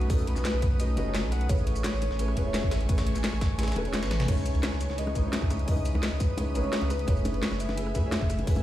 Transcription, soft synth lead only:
Already playing: F#4
0.10 A4
0.27 B4
0.80 D#5
1.32 F#5
1.50 C#5
3.77 A4
3.94 B4
4.29 C#5
4.64 C#5
4.99 D#5
5.25 C#5
5.51 C#5
5.68 D#5
6.21 B4
6.38 C#5
6.56 C#5
6.91 B4
7.08 C#5
7.61 E5

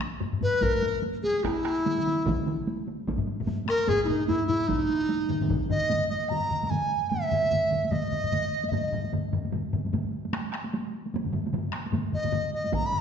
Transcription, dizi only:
0.43 B4
0.62 A#4
1.23 G#4
1.39 G#4
1.44 E4
3.69 A#4
3.88 G#4
4.05 D#4 E4
4.27 E4
4.47 E4
4.68 D#4
5.70 D#5
6.09 D#5
6.29 A#5
6.67 G#5 A#5
7.10 E5
7.88 D#5 E5
8.68 D#5 E5
12.14 D#5
12.54 D#5
12.74 A#5
12.86 B5

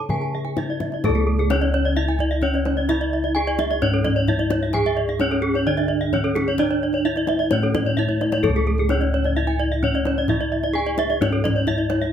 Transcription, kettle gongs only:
Already playing: C#5
0.10 C#3
0.57 D4
1.04 A4
1.09 C#2
1.51 D4
2.43 D4
2.89 E4
3.36 D4
3.82 G#2
4.28 D4
4.74 G#4
5.21 D4
5.67 D3
6.13 D4
6.59 D4
7.05 D4
7.52 A2
7.98 D4
8.44 A4
8.49 C#2
8.91 D4
9.84 D4
10.30 E4
10.75 D4
11.21 G#2
11.67 D4

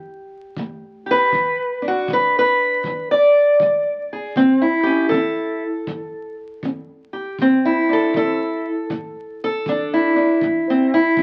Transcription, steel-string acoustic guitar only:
Already playing: E2 G4
0.59 A3
1.06 G4
1.11 B4
1.34 E2
1.82 D4
1.88 F#4
2.10 G#3 B4
2.39 B4
2.87 E2
3.11 D5
3.62 G#3
4.13 G#4
4.37 A2 C4
4.62 E4
4.83 C#4 G4
5.09 A4
5.14 C#4
5.89 E2
6.65 C#4
7.13 G4
7.42 C4
7.65 E4
7.89 D4 A4
8.16 D4 A4
8.90 A2
9.44 A4
9.69 D4
9.94 E4
10.16 D4
10.44 A2
10.70 C4
10.94 E4
11.18 C#4

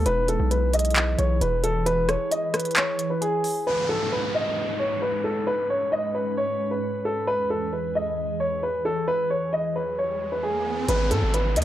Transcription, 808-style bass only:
0.06 E1
0.40 B1
1.18 B1
1.41 E1
10.88 G#1
11.11 G#2
11.22 G#1
11.56 D#2

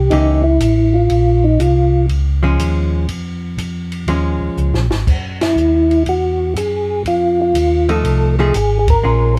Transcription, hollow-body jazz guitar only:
0.12 E3 A#3 C#4 G4
2.43 F3 G#3 C#4
4.08 F3 G#3 C#4
7.89 F3 A3 D#4
8.39 F3 A3 D#4 G#4
9.03 G#3 C#4 F4

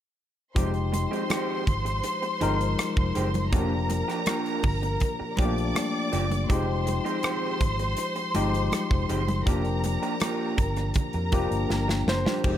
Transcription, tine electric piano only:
0.55 F3 G#3 D#4 G4
2.41 F3 G#3 D#4 A#4
3.52 F3 A#3 D4 G4
5.38 F3 A3 D4 G4
5.45 A#3
6.50 F3 G#3 D#4 G4
8.35 F3 G#3 D#4 G4
9.46 F3 A#3 D4 G4
11.33 F3 A#3 D4 G4
12.43 F3 G#3 D#4 G4

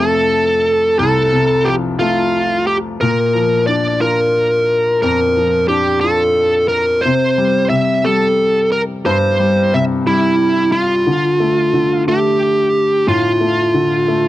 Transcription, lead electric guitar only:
0.00 A4
0.99 A4
1.65 G4
1.99 F4
2.67 G4
3.01 A#4
3.67 D5
4.01 A#4
5.02 A#4
5.68 G4
6.01 A4
6.68 A#4
7.01 C5
7.70 E5
8.05 A4
8.72 A#4
9.06 C5
9.74 E5
10.07 E4
10.72 F4
12.08 G4
13.08 F4

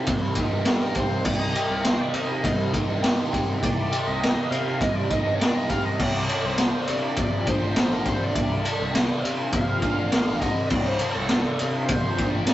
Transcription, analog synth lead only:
0.67 A4
0.81 A#4
0.96 C5
1.24 D5
1.39 D#5
1.66 A4
1.70 A#4
1.84 C5
2.01 D5
2.15 D#5
3.63 D5
4.07 D#5
4.50 F5
4.82 D#5
4.96 D5
5.11 D#5
5.35 C#5
5.39 D5
5.55 D#5
5.70 F5
5.85 D#5
6.00 D5
6.45 C5
6.90 D5
7.49 C5
7.93 A#4
8.08 C5
8.24 D5
9.53 F5
10.40 D#5
10.66 D5 D#5
10.87 C5
11.07 A4
11.86 C5
12.30 D5

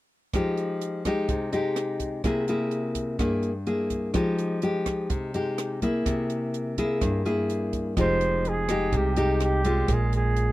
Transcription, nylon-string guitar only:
0.34 F3 G#3 D#4 G4
1.06 G#3 D#4 G4
1.29 C3
1.52 G#3 D#4 G4
2.25 C3 A#3 E4 G#4
2.49 A#3 E4 G#4
3.19 G2 A#3 E4 G#4
3.67 A#3 E4 G#4
4.14 F3 G#3 D#4 G4
4.63 G#3 D#4 G4
5.10 C3
5.34 G#3 D#4 G4
5.82 A#3 E4 G#4
6.06 C3
6.78 A#3 E4 G#4
7.02 G2
7.25 A#3 E4 G#4
7.97 F3 G#3 D#4 G4
8.70 G#3 D#4 G4
8.93 C3
9.16 G#3 D#4 G4
9.64 G#3 C#4 F4
9.89 A#2

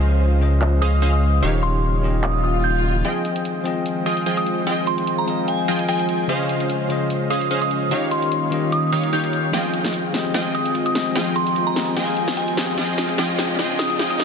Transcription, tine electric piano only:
Already playing: C#3 C#4 F4 C5 D#5
0.39 C#3 C#4 F4 C5 D#5
1.41 D#3 C#4 F4 G4 D#5
2.01 D#3 C#4 F4 G4 D#5
3.03 F3 C4 G#4 D#5 G5
3.64 F3 C4 G#4 D#5 G5
4.65 F3 C4 G#4 G5
4.69 D#5
5.26 F3 C4 G#4 D#5 F5
6.27 C#3 C#4 F4 C5 D#5
6.88 C#3 C#4 F4 C5
6.92 D#5
7.89 D#3 C#4 F4 G4
7.93 D#5
8.50 D#3 C#4 F4 G4
8.54 D#5
9.51 F3 C4 G#4 G5
9.55 D#5
10.12 F3 C4 G4 G#4
10.16 D#5
10.32 F3 C4 G#4 D#5 G5
10.93 F3 C4 G4 G#4
10.97 D#5
11.14 F3 C4 G#4 D#5 G5
11.74 F3 C4 G4 G#4
11.78 D#5
11.95 F3 C4 G#4 D#5 F5
12.55 F3 C4 G4 G#4 D#5
12.76 F3 C4 G#4 D#5 G5
13.16 F3 C4 G#4 G5
13.20 D#5
13.57 F3 C4 G#4 G5
13.61 D#5
13.97 F3 C4 G#4 D#5 G5

